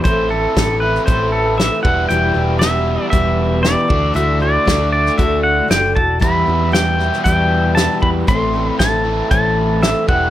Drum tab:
HH |x---x---x---x---|x---x---x---x---|x---x---x---x---|x---x---x---x---|
SD |----o--o----o---|----o-------o---|----o--o----o---|----o-oo----o---|
BD |o---o---o-----o-|--------o-----o-|----o---o-----o-|o-------o-----o-|

HH |x---x---x---x---|
SD |----o-------o---|
BD |o---o---o-----o-|